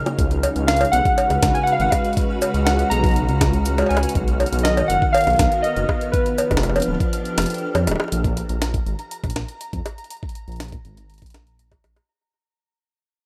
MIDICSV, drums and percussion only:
0, 0, Header, 1, 2, 480
1, 0, Start_track
1, 0, Tempo, 495868
1, 181, Time_signature, 4, 2, 24, 8
1, 12831, End_track
2, 0, Start_track
2, 0, Title_t, "Drums"
2, 61, Note_on_c, 9, 42, 39
2, 61, Note_on_c, 9, 60, 77
2, 157, Note_off_c, 9, 42, 0
2, 157, Note_off_c, 9, 60, 0
2, 180, Note_on_c, 9, 42, 64
2, 181, Note_on_c, 9, 36, 123
2, 277, Note_off_c, 9, 36, 0
2, 277, Note_off_c, 9, 42, 0
2, 300, Note_on_c, 9, 42, 37
2, 396, Note_off_c, 9, 42, 0
2, 420, Note_on_c, 9, 42, 93
2, 420, Note_on_c, 9, 56, 87
2, 517, Note_off_c, 9, 42, 0
2, 517, Note_off_c, 9, 56, 0
2, 540, Note_on_c, 9, 42, 39
2, 637, Note_off_c, 9, 42, 0
2, 660, Note_on_c, 9, 38, 124
2, 660, Note_on_c, 9, 42, 61
2, 741, Note_off_c, 9, 42, 0
2, 741, Note_on_c, 9, 42, 49
2, 757, Note_off_c, 9, 38, 0
2, 782, Note_off_c, 9, 42, 0
2, 782, Note_on_c, 9, 42, 37
2, 782, Note_on_c, 9, 56, 95
2, 821, Note_off_c, 9, 42, 0
2, 821, Note_on_c, 9, 42, 42
2, 878, Note_off_c, 9, 56, 0
2, 900, Note_off_c, 9, 42, 0
2, 900, Note_on_c, 9, 42, 88
2, 997, Note_off_c, 9, 42, 0
2, 1020, Note_on_c, 9, 36, 119
2, 1020, Note_on_c, 9, 42, 39
2, 1117, Note_off_c, 9, 36, 0
2, 1117, Note_off_c, 9, 42, 0
2, 1140, Note_on_c, 9, 42, 63
2, 1140, Note_on_c, 9, 56, 92
2, 1237, Note_off_c, 9, 42, 0
2, 1237, Note_off_c, 9, 56, 0
2, 1261, Note_on_c, 9, 42, 38
2, 1261, Note_on_c, 9, 60, 36
2, 1357, Note_off_c, 9, 42, 0
2, 1357, Note_off_c, 9, 60, 0
2, 1380, Note_on_c, 9, 36, 119
2, 1380, Note_on_c, 9, 38, 123
2, 1380, Note_on_c, 9, 42, 90
2, 1477, Note_off_c, 9, 36, 0
2, 1477, Note_off_c, 9, 38, 0
2, 1477, Note_off_c, 9, 42, 0
2, 1501, Note_on_c, 9, 42, 38
2, 1598, Note_off_c, 9, 42, 0
2, 1620, Note_on_c, 9, 42, 64
2, 1717, Note_off_c, 9, 42, 0
2, 1740, Note_on_c, 9, 42, 38
2, 1837, Note_off_c, 9, 42, 0
2, 1860, Note_on_c, 9, 36, 84
2, 1860, Note_on_c, 9, 42, 93
2, 1860, Note_on_c, 9, 60, 63
2, 1957, Note_off_c, 9, 36, 0
2, 1957, Note_off_c, 9, 42, 0
2, 1957, Note_off_c, 9, 60, 0
2, 1980, Note_on_c, 9, 42, 36
2, 2061, Note_off_c, 9, 42, 0
2, 2061, Note_on_c, 9, 42, 30
2, 2100, Note_on_c, 9, 36, 117
2, 2101, Note_off_c, 9, 42, 0
2, 2101, Note_on_c, 9, 42, 64
2, 2142, Note_off_c, 9, 42, 0
2, 2142, Note_on_c, 9, 42, 25
2, 2197, Note_off_c, 9, 36, 0
2, 2239, Note_off_c, 9, 42, 0
2, 2342, Note_on_c, 9, 42, 89
2, 2342, Note_on_c, 9, 56, 90
2, 2342, Note_on_c, 9, 82, 66
2, 2438, Note_off_c, 9, 42, 0
2, 2438, Note_off_c, 9, 56, 0
2, 2438, Note_off_c, 9, 82, 0
2, 2462, Note_on_c, 9, 42, 38
2, 2559, Note_off_c, 9, 42, 0
2, 2581, Note_on_c, 9, 38, 120
2, 2581, Note_on_c, 9, 42, 63
2, 2678, Note_off_c, 9, 38, 0
2, 2678, Note_off_c, 9, 42, 0
2, 2701, Note_on_c, 9, 42, 39
2, 2798, Note_off_c, 9, 42, 0
2, 2821, Note_on_c, 9, 42, 91
2, 2917, Note_off_c, 9, 42, 0
2, 2940, Note_on_c, 9, 36, 116
2, 2941, Note_on_c, 9, 42, 35
2, 2965, Note_off_c, 9, 42, 0
2, 2965, Note_on_c, 9, 42, 30
2, 2989, Note_off_c, 9, 42, 0
2, 2989, Note_on_c, 9, 42, 25
2, 3013, Note_off_c, 9, 42, 0
2, 3013, Note_on_c, 9, 42, 20
2, 3037, Note_off_c, 9, 36, 0
2, 3037, Note_off_c, 9, 42, 0
2, 3037, Note_on_c, 9, 42, 17
2, 3061, Note_off_c, 9, 42, 0
2, 3061, Note_on_c, 9, 42, 65
2, 3158, Note_off_c, 9, 42, 0
2, 3181, Note_on_c, 9, 42, 37
2, 3278, Note_off_c, 9, 42, 0
2, 3300, Note_on_c, 9, 36, 117
2, 3302, Note_on_c, 9, 38, 113
2, 3302, Note_on_c, 9, 42, 87
2, 3302, Note_on_c, 9, 60, 62
2, 3397, Note_off_c, 9, 36, 0
2, 3399, Note_off_c, 9, 38, 0
2, 3399, Note_off_c, 9, 42, 0
2, 3399, Note_off_c, 9, 60, 0
2, 3421, Note_on_c, 9, 42, 38
2, 3518, Note_off_c, 9, 42, 0
2, 3541, Note_on_c, 9, 42, 65
2, 3541, Note_on_c, 9, 82, 65
2, 3638, Note_off_c, 9, 42, 0
2, 3638, Note_off_c, 9, 82, 0
2, 3661, Note_on_c, 9, 42, 39
2, 3661, Note_on_c, 9, 56, 84
2, 3661, Note_on_c, 9, 60, 62
2, 3700, Note_off_c, 9, 56, 0
2, 3700, Note_on_c, 9, 56, 68
2, 3740, Note_off_c, 9, 56, 0
2, 3740, Note_on_c, 9, 56, 55
2, 3758, Note_off_c, 9, 42, 0
2, 3758, Note_off_c, 9, 60, 0
2, 3781, Note_off_c, 9, 56, 0
2, 3781, Note_on_c, 9, 42, 41
2, 3781, Note_on_c, 9, 56, 47
2, 3820, Note_off_c, 9, 56, 0
2, 3820, Note_on_c, 9, 56, 39
2, 3840, Note_off_c, 9, 42, 0
2, 3840, Note_on_c, 9, 42, 53
2, 3840, Note_on_c, 9, 60, 85
2, 3860, Note_off_c, 9, 56, 0
2, 3860, Note_on_c, 9, 56, 31
2, 3901, Note_off_c, 9, 42, 0
2, 3901, Note_on_c, 9, 42, 64
2, 3937, Note_off_c, 9, 60, 0
2, 3957, Note_off_c, 9, 56, 0
2, 3960, Note_off_c, 9, 42, 0
2, 3960, Note_on_c, 9, 42, 74
2, 4020, Note_off_c, 9, 42, 0
2, 4020, Note_on_c, 9, 36, 117
2, 4020, Note_on_c, 9, 42, 64
2, 4117, Note_off_c, 9, 36, 0
2, 4117, Note_off_c, 9, 42, 0
2, 4140, Note_on_c, 9, 42, 39
2, 4237, Note_off_c, 9, 42, 0
2, 4260, Note_on_c, 9, 42, 41
2, 4260, Note_on_c, 9, 56, 89
2, 4320, Note_off_c, 9, 42, 0
2, 4320, Note_on_c, 9, 42, 52
2, 4357, Note_off_c, 9, 56, 0
2, 4381, Note_off_c, 9, 42, 0
2, 4381, Note_on_c, 9, 42, 63
2, 4440, Note_off_c, 9, 42, 0
2, 4440, Note_on_c, 9, 42, 74
2, 4500, Note_off_c, 9, 42, 0
2, 4500, Note_on_c, 9, 38, 112
2, 4500, Note_on_c, 9, 42, 66
2, 4597, Note_off_c, 9, 38, 0
2, 4597, Note_off_c, 9, 42, 0
2, 4621, Note_on_c, 9, 42, 38
2, 4621, Note_on_c, 9, 56, 99
2, 4717, Note_off_c, 9, 42, 0
2, 4717, Note_off_c, 9, 56, 0
2, 4741, Note_on_c, 9, 42, 90
2, 4838, Note_off_c, 9, 42, 0
2, 4860, Note_on_c, 9, 36, 113
2, 4957, Note_off_c, 9, 36, 0
2, 4980, Note_on_c, 9, 42, 60
2, 4980, Note_on_c, 9, 56, 99
2, 5011, Note_off_c, 9, 42, 0
2, 5011, Note_on_c, 9, 42, 52
2, 5040, Note_off_c, 9, 42, 0
2, 5040, Note_on_c, 9, 42, 42
2, 5070, Note_off_c, 9, 42, 0
2, 5070, Note_on_c, 9, 42, 34
2, 5077, Note_off_c, 9, 56, 0
2, 5102, Note_off_c, 9, 42, 0
2, 5102, Note_on_c, 9, 42, 38
2, 5102, Note_on_c, 9, 60, 38
2, 5131, Note_off_c, 9, 42, 0
2, 5131, Note_on_c, 9, 42, 22
2, 5161, Note_off_c, 9, 42, 0
2, 5161, Note_on_c, 9, 42, 18
2, 5191, Note_off_c, 9, 42, 0
2, 5191, Note_on_c, 9, 42, 15
2, 5198, Note_off_c, 9, 60, 0
2, 5220, Note_off_c, 9, 42, 0
2, 5220, Note_on_c, 9, 36, 115
2, 5220, Note_on_c, 9, 38, 113
2, 5220, Note_on_c, 9, 42, 91
2, 5317, Note_off_c, 9, 36, 0
2, 5317, Note_off_c, 9, 38, 0
2, 5317, Note_off_c, 9, 42, 0
2, 5341, Note_on_c, 9, 42, 39
2, 5438, Note_off_c, 9, 42, 0
2, 5460, Note_on_c, 9, 42, 65
2, 5557, Note_off_c, 9, 42, 0
2, 5581, Note_on_c, 9, 42, 40
2, 5678, Note_off_c, 9, 42, 0
2, 5700, Note_on_c, 9, 36, 83
2, 5700, Note_on_c, 9, 60, 64
2, 5796, Note_off_c, 9, 36, 0
2, 5797, Note_off_c, 9, 60, 0
2, 5820, Note_on_c, 9, 42, 38
2, 5917, Note_off_c, 9, 42, 0
2, 5939, Note_on_c, 9, 36, 123
2, 5940, Note_on_c, 9, 42, 69
2, 6036, Note_off_c, 9, 36, 0
2, 6037, Note_off_c, 9, 42, 0
2, 6059, Note_on_c, 9, 42, 40
2, 6156, Note_off_c, 9, 42, 0
2, 6180, Note_on_c, 9, 42, 95
2, 6180, Note_on_c, 9, 56, 88
2, 6180, Note_on_c, 9, 82, 60
2, 6276, Note_off_c, 9, 42, 0
2, 6276, Note_off_c, 9, 56, 0
2, 6276, Note_off_c, 9, 82, 0
2, 6300, Note_on_c, 9, 36, 82
2, 6300, Note_on_c, 9, 42, 39
2, 6300, Note_on_c, 9, 60, 62
2, 6360, Note_off_c, 9, 60, 0
2, 6360, Note_on_c, 9, 38, 115
2, 6360, Note_on_c, 9, 60, 50
2, 6397, Note_off_c, 9, 36, 0
2, 6397, Note_off_c, 9, 42, 0
2, 6421, Note_off_c, 9, 60, 0
2, 6421, Note_on_c, 9, 42, 68
2, 6421, Note_on_c, 9, 60, 42
2, 6457, Note_off_c, 9, 38, 0
2, 6481, Note_off_c, 9, 60, 0
2, 6481, Note_on_c, 9, 60, 34
2, 6518, Note_off_c, 9, 42, 0
2, 6541, Note_on_c, 9, 42, 39
2, 6541, Note_on_c, 9, 56, 99
2, 6578, Note_off_c, 9, 60, 0
2, 6581, Note_off_c, 9, 42, 0
2, 6581, Note_on_c, 9, 42, 32
2, 6602, Note_off_c, 9, 42, 0
2, 6602, Note_on_c, 9, 42, 94
2, 6622, Note_off_c, 9, 42, 0
2, 6622, Note_on_c, 9, 42, 25
2, 6638, Note_off_c, 9, 56, 0
2, 6719, Note_off_c, 9, 42, 0
2, 6779, Note_on_c, 9, 36, 114
2, 6782, Note_on_c, 9, 42, 42
2, 6876, Note_off_c, 9, 36, 0
2, 6879, Note_off_c, 9, 42, 0
2, 6901, Note_on_c, 9, 42, 68
2, 6998, Note_off_c, 9, 42, 0
2, 7022, Note_on_c, 9, 42, 40
2, 7119, Note_off_c, 9, 42, 0
2, 7141, Note_on_c, 9, 38, 120
2, 7141, Note_on_c, 9, 42, 93
2, 7141, Note_on_c, 9, 60, 66
2, 7181, Note_off_c, 9, 42, 0
2, 7181, Note_on_c, 9, 42, 74
2, 7221, Note_off_c, 9, 42, 0
2, 7221, Note_on_c, 9, 42, 59
2, 7238, Note_off_c, 9, 38, 0
2, 7238, Note_off_c, 9, 60, 0
2, 7261, Note_off_c, 9, 42, 0
2, 7261, Note_on_c, 9, 42, 51
2, 7302, Note_off_c, 9, 42, 0
2, 7302, Note_on_c, 9, 42, 40
2, 7341, Note_off_c, 9, 42, 0
2, 7341, Note_on_c, 9, 42, 32
2, 7437, Note_off_c, 9, 42, 0
2, 7501, Note_on_c, 9, 42, 42
2, 7501, Note_on_c, 9, 56, 86
2, 7501, Note_on_c, 9, 60, 65
2, 7598, Note_off_c, 9, 42, 0
2, 7598, Note_off_c, 9, 56, 0
2, 7598, Note_off_c, 9, 60, 0
2, 7621, Note_on_c, 9, 42, 97
2, 7621, Note_on_c, 9, 60, 63
2, 7661, Note_off_c, 9, 60, 0
2, 7661, Note_on_c, 9, 60, 52
2, 7701, Note_off_c, 9, 60, 0
2, 7701, Note_on_c, 9, 60, 43
2, 7718, Note_off_c, 9, 42, 0
2, 7741, Note_off_c, 9, 60, 0
2, 7741, Note_on_c, 9, 60, 86
2, 7782, Note_off_c, 9, 60, 0
2, 7782, Note_on_c, 9, 60, 28
2, 7822, Note_off_c, 9, 60, 0
2, 7822, Note_on_c, 9, 60, 23
2, 7861, Note_on_c, 9, 42, 95
2, 7919, Note_off_c, 9, 60, 0
2, 7958, Note_off_c, 9, 42, 0
2, 7980, Note_on_c, 9, 36, 117
2, 7981, Note_on_c, 9, 42, 41
2, 8077, Note_off_c, 9, 36, 0
2, 8078, Note_off_c, 9, 42, 0
2, 8102, Note_on_c, 9, 42, 69
2, 8198, Note_off_c, 9, 42, 0
2, 8221, Note_on_c, 9, 42, 39
2, 8318, Note_off_c, 9, 42, 0
2, 8341, Note_on_c, 9, 38, 117
2, 8341, Note_on_c, 9, 42, 92
2, 8438, Note_off_c, 9, 38, 0
2, 8438, Note_off_c, 9, 42, 0
2, 8461, Note_on_c, 9, 36, 102
2, 8461, Note_on_c, 9, 42, 40
2, 8557, Note_off_c, 9, 36, 0
2, 8558, Note_off_c, 9, 42, 0
2, 8581, Note_on_c, 9, 42, 37
2, 8678, Note_off_c, 9, 42, 0
2, 8701, Note_on_c, 9, 42, 41
2, 8798, Note_off_c, 9, 42, 0
2, 8821, Note_on_c, 9, 42, 92
2, 8918, Note_off_c, 9, 42, 0
2, 8941, Note_on_c, 9, 36, 115
2, 8942, Note_on_c, 9, 42, 40
2, 8942, Note_on_c, 9, 60, 37
2, 9001, Note_off_c, 9, 42, 0
2, 9001, Note_on_c, 9, 42, 66
2, 9037, Note_off_c, 9, 36, 0
2, 9038, Note_off_c, 9, 60, 0
2, 9061, Note_on_c, 9, 38, 116
2, 9098, Note_off_c, 9, 42, 0
2, 9157, Note_off_c, 9, 38, 0
2, 9181, Note_on_c, 9, 42, 38
2, 9278, Note_off_c, 9, 42, 0
2, 9300, Note_on_c, 9, 42, 90
2, 9397, Note_off_c, 9, 42, 0
2, 9420, Note_on_c, 9, 36, 115
2, 9421, Note_on_c, 9, 42, 40
2, 9517, Note_off_c, 9, 36, 0
2, 9517, Note_off_c, 9, 42, 0
2, 9541, Note_on_c, 9, 42, 68
2, 9541, Note_on_c, 9, 60, 63
2, 9638, Note_off_c, 9, 42, 0
2, 9638, Note_off_c, 9, 60, 0
2, 9662, Note_on_c, 9, 42, 37
2, 9721, Note_off_c, 9, 42, 0
2, 9721, Note_on_c, 9, 42, 31
2, 9781, Note_off_c, 9, 42, 0
2, 9781, Note_on_c, 9, 42, 96
2, 9842, Note_off_c, 9, 42, 0
2, 9842, Note_on_c, 9, 42, 20
2, 9901, Note_on_c, 9, 36, 102
2, 9939, Note_off_c, 9, 42, 0
2, 9962, Note_on_c, 9, 42, 40
2, 9997, Note_off_c, 9, 36, 0
2, 10022, Note_off_c, 9, 42, 0
2, 10022, Note_on_c, 9, 42, 65
2, 10118, Note_off_c, 9, 42, 0
2, 10142, Note_on_c, 9, 42, 18
2, 10182, Note_off_c, 9, 42, 0
2, 10182, Note_on_c, 9, 42, 21
2, 10222, Note_off_c, 9, 42, 0
2, 10222, Note_on_c, 9, 42, 25
2, 10262, Note_off_c, 9, 42, 0
2, 10262, Note_on_c, 9, 38, 114
2, 10262, Note_on_c, 9, 42, 91
2, 10343, Note_off_c, 9, 42, 0
2, 10343, Note_on_c, 9, 42, 34
2, 10359, Note_off_c, 9, 38, 0
2, 10381, Note_on_c, 9, 36, 115
2, 10382, Note_off_c, 9, 42, 0
2, 10382, Note_on_c, 9, 42, 39
2, 10478, Note_off_c, 9, 36, 0
2, 10478, Note_off_c, 9, 42, 0
2, 10502, Note_on_c, 9, 42, 35
2, 10598, Note_off_c, 9, 42, 0
2, 10622, Note_on_c, 9, 42, 40
2, 10719, Note_off_c, 9, 42, 0
2, 10741, Note_on_c, 9, 42, 41
2, 10781, Note_off_c, 9, 42, 0
2, 10781, Note_on_c, 9, 42, 49
2, 10821, Note_off_c, 9, 42, 0
2, 10821, Note_on_c, 9, 42, 56
2, 10861, Note_off_c, 9, 42, 0
2, 10861, Note_on_c, 9, 36, 114
2, 10861, Note_on_c, 9, 42, 63
2, 10901, Note_off_c, 9, 42, 0
2, 10901, Note_on_c, 9, 42, 71
2, 10941, Note_off_c, 9, 42, 0
2, 10941, Note_on_c, 9, 42, 77
2, 10958, Note_off_c, 9, 36, 0
2, 10981, Note_off_c, 9, 42, 0
2, 10981, Note_on_c, 9, 38, 114
2, 10981, Note_on_c, 9, 42, 66
2, 10981, Note_on_c, 9, 60, 57
2, 11078, Note_off_c, 9, 38, 0
2, 11078, Note_off_c, 9, 42, 0
2, 11078, Note_off_c, 9, 60, 0
2, 11102, Note_on_c, 9, 42, 38
2, 11198, Note_off_c, 9, 42, 0
2, 11221, Note_on_c, 9, 42, 87
2, 11318, Note_off_c, 9, 42, 0
2, 11341, Note_on_c, 9, 36, 101
2, 11341, Note_on_c, 9, 42, 39
2, 11341, Note_on_c, 9, 60, 60
2, 11438, Note_off_c, 9, 36, 0
2, 11438, Note_off_c, 9, 42, 0
2, 11438, Note_off_c, 9, 60, 0
2, 11462, Note_on_c, 9, 42, 64
2, 11462, Note_on_c, 9, 60, 59
2, 11559, Note_off_c, 9, 42, 0
2, 11559, Note_off_c, 9, 60, 0
2, 11582, Note_on_c, 9, 42, 40
2, 11582, Note_on_c, 9, 60, 73
2, 11679, Note_off_c, 9, 42, 0
2, 11679, Note_off_c, 9, 60, 0
2, 12831, End_track
0, 0, End_of_file